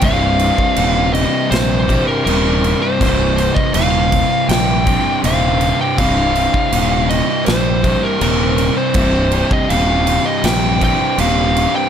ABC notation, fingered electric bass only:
X:1
M:4/4
L:1/8
Q:1/4=81
K:Cm
V:1 name="Fingered electric bass" clef=bass
C,,,2 E,,,2 B,,,2 E,,,2 | C,,,2 E,,,2 B,,,2 E,,,2 | C,,,2 E,,,2 B,,,2 E,,,2 | C,,,2 E,,,2 B,,,2 E,,,2 |]